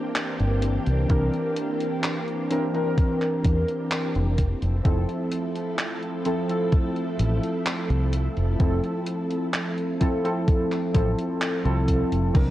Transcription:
Already playing: E3 A#3 C4 D4 G4 A#4
0.16 clap, closed hi-hat
0.40 G1, closed hi-hat
0.62 closed hi-hat
0.87 C2, closed hi-hat
1.08 C2 E3 C4 D4 A#4, kick, closed hi-hat
1.34 closed hi-hat
1.57 closed hi-hat
1.81 closed hi-hat
2.04 clap, closed hi-hat
2.28 closed hi-hat
2.50 E3 C4 D4 A#4, closed hi-hat
2.73 E3 C4 D4 A#4, closed hi-hat
2.98 kick, closed hi-hat
3.22 clap, closed hi-hat
3.44 E2, kick, closed hi-hat
3.68 closed hi-hat
3.91 clap, closed hi-hat
4.15 F1, closed hi-hat
4.38 F3 A3 E4 A4, kick, closed hi-hat
4.62 F1, closed hi-hat
4.84 F1 F3 C4 E4 A4, kick, closed hi-hat
5.09 closed hi-hat
5.32 closed hi-hat
5.55 closed hi-hat
5.78 clap, closed hi-hat
6.02 closed hi-hat
6.25 F3 C4 E4 A4, closed hi-hat
6.48 F3 C4 E4 A4, closed hi-hat
6.72 kick, closed hi-hat
6.96 closed hi-hat
7.19 A1, closed hi-hat
7.44 closed hi-hat
7.66 clap, closed hi-hat
7.90 C2, closed hi-hat
8.13 closed hi-hat
8.37 F1, closed hi-hat
8.58 F1 F3 C4 E4 A4, kick, closed hi-hat
8.84 closed hi-hat
9.06 closed hi-hat
9.30 closed hi-hat
9.53 clap, closed hi-hat
9.77 closed hi-hat
10.00 F3 C4 E4 A4, kick, closed hi-hat
10.24 F3 C4 E4 A4, closed hi-hat
10.48 kick, closed hi-hat
10.72 clap, closed hi-hat
10.94 A1 F3 C4 E4 A4, kick, closed hi-hat
11.18 closed hi-hat
11.41 clap, closed hi-hat
11.64 C2 F3 C4 E4 A4, closed hi-hat
11.88 kick, closed hi-hat
12.12 F1, closed hi-hat
12.33 C2 E3 C4 D4 A#4, kick, closed hi-hat, crash, high conga

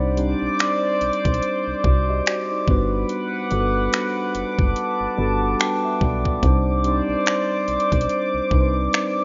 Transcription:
Already playing: C2 G3 C4 D4 D#4 C5 D5 D6
0.17 G3 C4 D4 D#4 C5, closed hi-hat
0.42 B1
0.59 finger snap, closed hi-hat
1.01 B1, closed hi-hat
1.13 closed hi-hat
1.25 B1, kick, closed hi-hat
1.34 closed hi-hat
1.43 closed hi-hat
1.68 C2
1.84 C2 F#4 D5, kick
2.09 G4 D#5
2.26 F#4 D5, finger snap, closed hi-hat
2.51 D#4 C5
2.67 G1 G3 B3 D4 F#4 B4 F#5, kick
3.09 closed hi-hat
3.50 G1 G3 B3 D4 F#4 A4, closed hi-hat
3.60 B4
3.93 finger snap, closed hi-hat
4.34 F#1 A5, closed hi-hat
4.59 F#1, kick
4.76 closed hi-hat
5.01 G1
5.17 G1 G3 B3 D4 F#4 A4 B5
5.43 A5
5.60 G5, finger snap, closed hi-hat
5.85 E5
6.01 B1 D5, kick
6.25 kick
6.42 C2 G3 C4 D4 D#4 C5 D5, kick, closed hi-hat
6.84 G3 C4 D4 D#4 C5, closed hi-hat
7.09 B1
7.26 finger snap, closed hi-hat
7.68 B1, closed hi-hat
7.80 closed hi-hat
7.92 B1, kick, closed hi-hat
8.01 closed hi-hat
8.09 closed hi-hat
8.34 C2
8.50 C2 G3 C4 D4 D#4 B4, kick
8.61 C5
8.93 finger snap, closed hi-hat

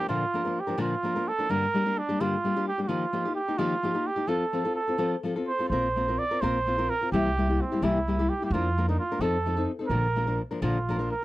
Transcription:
0.08 A#2 D3 F3 A#3 D4 F4 A#4
0.34 F3 A#3 D4 A#4
0.45 F3 A#3 D4 A#4
0.60 G4
0.67 F3 A#3 D4 A#4
0.77 A#2 D3 F3 A#3 D4 F4 A#4
1.03 F3 A#3 D4 A#4
1.16 F3 A#3 D4 A#4
1.28 A4
1.39 F3 A#3 D4 A#4
1.49 G2 D3 G3 A#3 D4 G4 A#4
1.74 G3 A#3 D4 G4
1.85 G3 A#3 D4 G4
1.98 D4
2.09 G3 A#3 D4 G4
2.20 G2 D3 G3 A#3 D4 F4 G4
2.44 G3 A#3 D4 G4
2.56 G3 A#3 D4 G4
2.68 G4
2.78 G3 A#3 D4 G4
2.82 G4
2.88 D#3 F3 A#3 D#4 F4 G4
3.13 F3 A#3 D#4 G4
3.25 A#3 D#4 G4
3.35 G4
3.48 A#3 D#4 G4
3.58 D#3 F3 A#3 D#4 F4 G4
3.83 F3 A#3 D#4 G4
3.94 A#3 D#4 G4
4.07 G4
4.16 A#3 D#4 G4
4.27 F3 C4 F4 A4
4.53 F3 C4 F4 A4
4.65 C4 F4 A4
4.76 A4
4.88 C4 F4 A4
4.98 F3 C4 F4 A4
5.23 F3 C4 F4 A4
5.36 C4 F4 A4
5.48 C5
5.59 C4 F4 A4
5.69 A#1 A#3 C4 F4 A#4 C5
5.96 A#3 C4 F4 A#4
6.08 C4 F4 A#4
6.18 D5
6.31 C4 F4 A#4
6.41 A#1 A#3 C4 F4 A#4 C5
6.67 A#3 C4 F4 A#4
6.78 C4 F4 A#4
6.90 A#4
7.01 C4 F4 A#4
7.12 C2 C3 E3 G3 A#3 E4 G4
7.37 G3 A#3 E4 G4
7.50 G3 A#3 E4 G4
7.61 C4
7.72 G3 A#3 E4 G4
7.82 C2 C3 E3 G3 A#3 E4 G4
8.08 G3 A#3 E4 G4
8.19 G3 A#3 E4 G4
8.29 G4
8.42 G3 A#3 E4 G4
8.51 F2 F3 A#3 D4 F4
8.55 A#4
8.78 F3 A#3 D4 A#4
8.89 A#3 D4 D#4 A#4
8.99 F4
9.12 A#3 D4 A#4
9.19 F2 F3 C4 D#4 A4
9.46 F3 C4 D#4 A4
9.57 C4 D#4 A4
9.79 C4 D#4 A4
9.88 A#1 A#2 D3 F3 A#3 D4 A#4
10.16 F3 A#3 D4 A#4
10.27 F3 A#3 D4 A#4
10.51 F3 A#3 D4 A#4
10.62 A#1 A#2 D3 F3 A#3 D4 F4 A#4
10.89 F3 A#3 D4 A#4
10.99 F3 A#3 D4 A#4
11.11 A#4

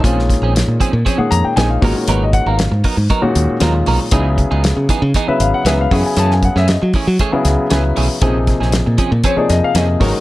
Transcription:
0.04 A#1 A#2 D#3 F3 G#3 C4 C#4 F4 G#4, kick, closed hi-hat
0.19 snare
0.29 muted clean electric guitar stroke, kick, snare, closed hi-hat
0.42 A#1 C4 C#4 G#4
0.55 muted clean electric guitar stroke, snare, closed hi-hat
0.68 A#2, muted clean electric guitar stroke
0.80 F3 C4 C#4 G#4, kick, closed hi-hat
0.93 A#2
1.05 F3 C4 C#4 G#4 C#5, kick, closed hi-hat
1.18 A#2 D#3 G#3 C#4 G#4 F#5, muted fingered electric bass stroke, muted clean electric guitar stroke
1.31 F2 A#5, muted clean electric guitar stroke, closed hi-hat
1.44 G5, muted fingered electric bass stroke
1.56 A#1 A#2 D#3 F3 G#3 C4 C#4 D#4 G#4 G#5, snare, closed hi-hat
1.70 F5, muted clean electric guitar stroke
1.81 G#1 A#2 D#3 F#3 G#3 B3 C#4 D#4 F#4 A#4 C#5, kick, open hi-hat
1.96 A#4, muted clean electric guitar stroke
2.08 G#1 F#3 B3 D#4 A#4 B4, closed hi-hat
2.23 D#5
2.33 F#5, muted clean electric guitar stroke, kick, closed hi-hat
2.46 G#1 B3 D#4 A#4 F5
2.59 muted clean electric guitar stroke, snare, closed hi-hat
2.71 G#2, muted clean electric guitar stroke
2.84 F#3 B3 D#4 A#4, kick, open hi-hat
2.97 G#2, muted clean electric guitar stroke
3.10 F#3 B3 D#4 A#4, kick, closed hi-hat
3.22 A#2 D#3 G#3 C#4 F#4, muted fingered electric bass stroke, muted clean electric guitar stroke
3.35 D#2, muted clean electric guitar stroke, closed hi-hat
3.49 muted fingered electric bass stroke
3.60 D#2 A#2 D#3 F#3 G#3 B3 C#4 D#4 F4 A#4, snare, closed hi-hat
3.75 muted clean electric guitar stroke
3.86 B1 F#3 B3 D#4 A#4, open hi-hat
4.11 C#2 C#3 E3 F#3 B3 D#4 E4 G#4, kick, closed hi-hat
4.38 muted clean electric guitar stroke, kick, closed hi-hat
4.51 C#2 B3 D#4 G#4
4.64 muted clean electric guitar stroke, snare, closed hi-hat
4.77 C#3, muted clean electric guitar stroke
4.89 E3 B3 D#4 G#4, kick, closed hi-hat
5.02 C#3, muted clean electric guitar stroke
5.14 E3 B3 D#4 G#4, kick, closed hi-hat
5.28 C#3 F#3 B3 E4 B4 E5, muted fingered electric bass stroke, muted clean electric guitar stroke
5.40 G#1 F5, muted clean electric guitar stroke, closed hi-hat
5.54 F#5, muted fingered electric bass stroke
5.65 C#2 C#3 E3 F#3 B3 D#4 E4 G#4 B4 E5, snare, closed hi-hat
5.79 F5, muted clean electric guitar stroke
5.91 F#2 C#3 E3 F#3 A3 B3 C#4 E4 G#4 F#5, kick, open hi-hat
6.05 G#5, muted clean electric guitar stroke
6.17 F#2 E3 A3 C#4 G#4 A5, closed hi-hat
6.31 G#5, snare
6.43 F#5, muted clean electric guitar stroke, kick, closed hi-hat
6.56 F#2 A3 C#4 G#4 E5, snare
6.68 D#5, muted clean electric guitar stroke, snare, closed hi-hat
6.82 F#3, muted clean electric guitar stroke
6.93 E3 A3 C#4 G#4, kick, open hi-hat
7.07 F#3, muted clean electric guitar stroke
7.19 E3 A3 C#4 G#4, kick, closed hi-hat
7.32 C#3 F#3 B3 E4 G#4, muted clean electric guitar stroke, muted fingered electric bass stroke
7.45 C#2, muted clean electric guitar stroke, snare, closed hi-hat
7.59 muted fingered electric bass stroke
7.70 C#2 C#3 E3 F#3 A3 B3 C#4 E4 G#4 B4, snare, closed hi-hat
7.84 muted clean electric guitar stroke
7.96 B1 E3 A3 C#4 G#4, open hi-hat
8.09 muted clean electric guitar stroke
8.21 A#1 C3 F3 A#3 C4 C#4 D#4 G#4, kick, closed hi-hat
8.47 muted clean electric guitar stroke, kick, snare, closed hi-hat
8.60 A#1 C4 C#4 G#4, snare
8.72 muted clean electric guitar stroke, snare, closed hi-hat
8.86 A#2, muted clean electric guitar stroke
8.98 F3 C4 C#4 G#4, kick, closed hi-hat
9.12 A#2, muted clean electric guitar stroke
9.24 F3 C4 C#4 G#4 C#5, kick, closed hi-hat
9.37 C3 F3 A#3 D#4 G#4 D5, muted fingered electric bass stroke, muted clean electric guitar stroke
9.49 F2 D#5, muted clean electric guitar stroke, snare, closed hi-hat
9.63 F5, muted fingered electric bass stroke
9.75 F2 C3 F3 A#3 C4 C#4 D#4 G#4 D#5, snare, closed hi-hat
9.88 muted clean electric guitar stroke
10.00 G#1 D#3 F#3 G#3 B3 C#4 D#4 F#4 A#4, kick, snare, open hi-hat
10.14 muted clean electric guitar stroke

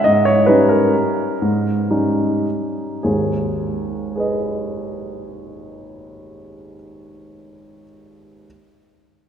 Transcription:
0.04 G#2 D#5
0.25 C#5
0.46 G3 C#4 D#4 B4
0.69 A#4
1.42 G#2
1.90 G3 C#4 D#4
3.03 G#1 D#2 G#4
4.15 G#4 B4
4.20 D#5

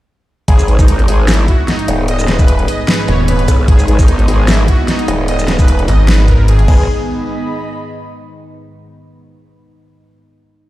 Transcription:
0.48 G#1 G#2 D#3 B3 D#4 G#4, kick, closed hi-hat
0.59 shaker
0.68 G#3 D#4 B4, closed hi-hat
0.79 G#3 D#4 B4, kick, shaker
0.88 G#4, closed hi-hat
0.99 closed hi-hat
1.08 G#1 G#4, open hi-hat
1.28 E4, snare, closed hi-hat, shaker
1.32 D#5, closed hi-hat
1.48 F#4, kick, closed hi-hat
1.68 D#4, snare, closed hi-hat
1.79 B5, closed hi-hat
1.88 D#1, closed hi-hat
2.08 D#5, closed hi-hat
2.19 shaker
2.28 G#3 D#4 B4, snare, closed hi-hat
2.39 G#3 D#4 B4, kick, shaker
2.48 closed hi-hat
2.59 closed hi-hat
2.68 D#5, open hi-hat
2.88 B4, snare, closed hi-hat
2.94 closed hi-hat
3.08 D#1 C#5, closed hi-hat
3.28 B4, closed hi-hat
3.39 closed hi-hat
3.48 B1, kick, closed hi-hat, shaker
3.68 G#1 G#4, kick, closed hi-hat
3.79 shaker
3.88 G#3 D#4 B4, closed hi-hat
3.99 G#3 D#4 B4, kick, shaker
4.08 closed hi-hat
4.19 closed hi-hat
4.28 G#1 G#4, open hi-hat
4.48 E4, snare, closed hi-hat, shaker
4.54 closed hi-hat
4.68 F#4, kick, closed hi-hat
4.88 D#4, snare, closed hi-hat
4.99 closed hi-hat
5.08 D#1, closed hi-hat
5.28 D#5, closed hi-hat
5.39 shaker
5.48 G#3 D#4 B4, snare, closed hi-hat
5.59 G#3 D#4 B4, kick, shaker
5.68 closed hi-hat
5.79 closed hi-hat
5.88 G#1 D#5, open hi-hat
6.08 B4, snare, closed hi-hat
6.14 closed hi-hat
6.28 A#4, kick, closed hi-hat
6.48 G#1 G#4, closed hi-hat
6.59 closed hi-hat
6.68 G#1 G#3 B3 D#4 G#4 B4, kick, crash
6.75 G#4
7.01 D#5
7.06 B5

